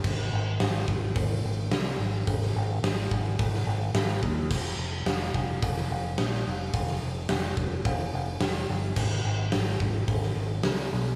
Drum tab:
CC |x---------------|----------------|x---------------|----------------|
HH |----o---o---o---|o---o---o---o---|----o---o---o---|o---o---o---o---|
SD |----o-------o---|-o--o----o--o---|----o----o--o---|-o--o-------o---|
BD |o-----o-o-------|o-----o-o-----o-|o-----o-o-------|o-----o-o-------|

CC |x---------------|
HH |----o---o---o---|
SD |----o----o--o---|
BD |o-----o-o-------|